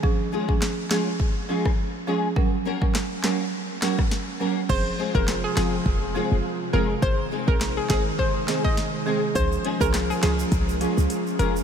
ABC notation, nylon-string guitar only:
X:1
M:4/4
L:1/8
Q:"Swing 16ths" 1/4=103
K:Fphr
V:1 name="Nylon-string guitar"
z [A,DFA] z [A,DFA] z [A,DFA] z [A,DFA] | z [B,DGB] z [B,DGB] z [B,DGB] z [B,DGB] | z [A,CFA] z [A,CFA] z [A,CFA] z [A,CFA] | z [A,CEA] z [A,CEA] z [A,CEA] z [A,CEA] |
z [A,DFA] z [A,DFA] z [A,DFA] z [A,DFA] |]